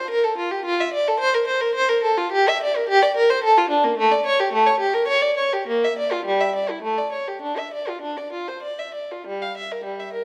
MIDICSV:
0, 0, Header, 1, 2, 480
1, 0, Start_track
1, 0, Key_signature, -1, "minor"
1, 0, Tempo, 551978
1, 561, Time_signature, 3, 2, 24, 8
1, 4407, Tempo, 580271
1, 5847, Tempo, 610376
1, 7767, Tempo, 581395
1, 8585, End_track
2, 0, Start_track
2, 0, Title_t, "Violin"
2, 0, Program_c, 0, 40
2, 0, Note_on_c, 0, 72, 80
2, 88, Note_on_c, 0, 70, 91
2, 89, Note_off_c, 0, 72, 0
2, 204, Note_off_c, 0, 70, 0
2, 206, Note_on_c, 0, 69, 82
2, 324, Note_off_c, 0, 69, 0
2, 327, Note_on_c, 0, 65, 74
2, 441, Note_off_c, 0, 65, 0
2, 443, Note_on_c, 0, 67, 81
2, 561, Note_off_c, 0, 67, 0
2, 567, Note_on_c, 0, 65, 96
2, 680, Note_off_c, 0, 65, 0
2, 696, Note_on_c, 0, 76, 86
2, 807, Note_off_c, 0, 76, 0
2, 812, Note_on_c, 0, 74, 90
2, 922, Note_off_c, 0, 74, 0
2, 937, Note_on_c, 0, 69, 90
2, 1040, Note_on_c, 0, 72, 112
2, 1046, Note_off_c, 0, 69, 0
2, 1154, Note_off_c, 0, 72, 0
2, 1167, Note_on_c, 0, 70, 94
2, 1277, Note_on_c, 0, 72, 85
2, 1279, Note_off_c, 0, 70, 0
2, 1392, Note_off_c, 0, 72, 0
2, 1398, Note_on_c, 0, 70, 90
2, 1515, Note_off_c, 0, 70, 0
2, 1520, Note_on_c, 0, 72, 110
2, 1636, Note_off_c, 0, 72, 0
2, 1641, Note_on_c, 0, 70, 99
2, 1763, Note_off_c, 0, 70, 0
2, 1766, Note_on_c, 0, 69, 86
2, 1887, Note_off_c, 0, 69, 0
2, 1893, Note_on_c, 0, 65, 90
2, 2016, Note_on_c, 0, 67, 111
2, 2019, Note_off_c, 0, 65, 0
2, 2141, Note_off_c, 0, 67, 0
2, 2161, Note_on_c, 0, 76, 98
2, 2275, Note_off_c, 0, 76, 0
2, 2289, Note_on_c, 0, 74, 92
2, 2395, Note_off_c, 0, 74, 0
2, 2401, Note_on_c, 0, 70, 89
2, 2510, Note_on_c, 0, 67, 118
2, 2512, Note_off_c, 0, 70, 0
2, 2623, Note_off_c, 0, 67, 0
2, 2626, Note_on_c, 0, 74, 99
2, 2743, Note_off_c, 0, 74, 0
2, 2751, Note_on_c, 0, 70, 96
2, 2862, Note_off_c, 0, 70, 0
2, 2868, Note_on_c, 0, 72, 97
2, 2982, Note_off_c, 0, 72, 0
2, 2989, Note_on_c, 0, 69, 106
2, 3099, Note_off_c, 0, 69, 0
2, 3111, Note_on_c, 0, 65, 94
2, 3216, Note_on_c, 0, 62, 87
2, 3222, Note_off_c, 0, 65, 0
2, 3331, Note_off_c, 0, 62, 0
2, 3338, Note_on_c, 0, 58, 82
2, 3454, Note_off_c, 0, 58, 0
2, 3457, Note_on_c, 0, 57, 114
2, 3572, Note_off_c, 0, 57, 0
2, 3578, Note_on_c, 0, 74, 92
2, 3694, Note_off_c, 0, 74, 0
2, 3705, Note_on_c, 0, 73, 96
2, 3815, Note_off_c, 0, 73, 0
2, 3824, Note_on_c, 0, 67, 89
2, 3937, Note_off_c, 0, 67, 0
2, 3937, Note_on_c, 0, 57, 104
2, 4050, Note_off_c, 0, 57, 0
2, 4056, Note_on_c, 0, 73, 86
2, 4172, Note_off_c, 0, 73, 0
2, 4173, Note_on_c, 0, 67, 84
2, 4287, Note_off_c, 0, 67, 0
2, 4292, Note_on_c, 0, 70, 90
2, 4410, Note_off_c, 0, 70, 0
2, 4414, Note_on_c, 0, 73, 97
2, 4524, Note_off_c, 0, 73, 0
2, 4530, Note_on_c, 0, 74, 90
2, 4646, Note_off_c, 0, 74, 0
2, 4658, Note_on_c, 0, 73, 78
2, 4770, Note_off_c, 0, 73, 0
2, 4788, Note_on_c, 0, 67, 75
2, 4901, Note_off_c, 0, 67, 0
2, 4906, Note_on_c, 0, 58, 91
2, 5020, Note_off_c, 0, 58, 0
2, 5047, Note_on_c, 0, 76, 80
2, 5151, Note_off_c, 0, 76, 0
2, 5164, Note_on_c, 0, 74, 78
2, 5266, Note_off_c, 0, 74, 0
2, 5275, Note_on_c, 0, 65, 76
2, 5383, Note_off_c, 0, 65, 0
2, 5388, Note_on_c, 0, 55, 99
2, 5496, Note_off_c, 0, 55, 0
2, 5512, Note_on_c, 0, 76, 76
2, 5620, Note_off_c, 0, 76, 0
2, 5637, Note_on_c, 0, 74, 69
2, 5740, Note_off_c, 0, 74, 0
2, 5756, Note_on_c, 0, 64, 66
2, 5860, Note_on_c, 0, 57, 86
2, 5861, Note_off_c, 0, 64, 0
2, 5967, Note_off_c, 0, 57, 0
2, 5980, Note_on_c, 0, 74, 68
2, 6088, Note_off_c, 0, 74, 0
2, 6092, Note_on_c, 0, 73, 60
2, 6201, Note_off_c, 0, 73, 0
2, 6217, Note_on_c, 0, 67, 57
2, 6324, Note_on_c, 0, 62, 67
2, 6326, Note_off_c, 0, 67, 0
2, 6438, Note_off_c, 0, 62, 0
2, 6453, Note_on_c, 0, 76, 60
2, 6564, Note_off_c, 0, 76, 0
2, 6576, Note_on_c, 0, 74, 58
2, 6683, Note_off_c, 0, 74, 0
2, 6693, Note_on_c, 0, 65, 57
2, 6796, Note_on_c, 0, 62, 67
2, 6804, Note_off_c, 0, 65, 0
2, 6912, Note_off_c, 0, 62, 0
2, 6917, Note_on_c, 0, 74, 60
2, 7034, Note_off_c, 0, 74, 0
2, 7039, Note_on_c, 0, 65, 52
2, 7152, Note_off_c, 0, 65, 0
2, 7161, Note_on_c, 0, 72, 57
2, 7274, Note_off_c, 0, 72, 0
2, 7275, Note_on_c, 0, 74, 63
2, 7390, Note_off_c, 0, 74, 0
2, 7402, Note_on_c, 0, 76, 56
2, 7522, Note_off_c, 0, 76, 0
2, 7524, Note_on_c, 0, 74, 50
2, 7644, Note_off_c, 0, 74, 0
2, 7661, Note_on_c, 0, 65, 52
2, 7777, Note_off_c, 0, 65, 0
2, 7780, Note_on_c, 0, 55, 74
2, 7899, Note_off_c, 0, 55, 0
2, 7909, Note_on_c, 0, 77, 66
2, 8025, Note_off_c, 0, 77, 0
2, 8032, Note_on_c, 0, 76, 63
2, 8143, Note_off_c, 0, 76, 0
2, 8151, Note_on_c, 0, 70, 60
2, 8255, Note_on_c, 0, 55, 64
2, 8263, Note_off_c, 0, 70, 0
2, 8371, Note_off_c, 0, 55, 0
2, 8382, Note_on_c, 0, 76, 60
2, 8494, Note_on_c, 0, 70, 59
2, 8495, Note_off_c, 0, 76, 0
2, 8585, Note_off_c, 0, 70, 0
2, 8585, End_track
0, 0, End_of_file